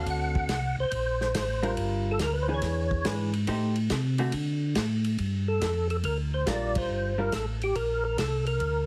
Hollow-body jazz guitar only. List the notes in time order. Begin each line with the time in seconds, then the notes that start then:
Already playing: D3 C4 F#4 A4
1.63 G3 D4 F4 A#4
2.48 E3 D4 G#4 B4
3.05 E3 D4 G#4 B4
3.47 A3 D#4 G4 C5
4.19 D3 A3 C4 F#4
6.46 G3 D4 F4 A#4
7.18 G3 D4 F4 A#4